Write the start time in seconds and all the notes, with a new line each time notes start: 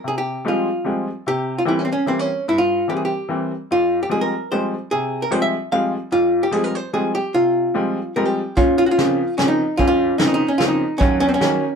0.04 C3 G#4
0.18 G4
0.45 F3 G3 G#3 C4 F4
0.84 F3 G3 G#3 C4
1.27 C3 G4
1.58 F4
1.65 E3 G3 A#3 C4 E4
1.79 C#4
1.85 C4
1.92 C#4
2.06 E3 G3 A#3 C4
2.19 C#4
2.48 G2 E4
2.58 F4
2.88 E3 G3 A#3 C4 G4
2.97 G#4
3.05 G4
3.29 E3 G3 A#3 C4
3.71 F2 F4
4.03 G4
4.09 F3 G3 G#3 C4 G#4
4.21 A#4
4.52 F3 G3 G#3 C4 C5
4.91 C3 G#4
5.22 A#4
5.31 F3 G3 G#3 C4 C5
5.42 E5
5.72 F3 G3 G#3 C4 F5
6.12 F2 F4
6.43 G4
6.51 F3 G3 G#3 C4 G#4
6.64 A#4
6.75 C5
6.93 F3 G3 G#3 C4 G#4
7.15 G4
7.34 C3 F4
7.74 F3 G3 G#3 C4
8.16 F3 G3 G#3 C4 A#4
8.25 G4
8.57 A#2 C#4 F4, kick, closed hi-hat
8.78 F4
8.86 F#4
8.91 F4
8.98 C#3 F3 A#3 C4, snare, closed hi-hat
9.38 C#3 F3 A#3 C4 C#4, snare, closed hi-hat
9.48 D#4
9.77 F2 C#4 F4, kick, closed hi-hat
9.88 F4
10.18 C#3 F3 A#3 C4 D#4, snare, closed hi-hat
10.27 D#4
10.34 D#4
10.48 C#4
10.58 C#3 F3 A#3 C4 F4, snare, closed hi-hat
10.68 D#4
10.98 D#2 F#3 C#4, kick, closed hi-hat
11.20 C#4
11.29 C4
11.34 C#4
11.40 D#3 F#3 A#3 C#4, snare, closed hi-hat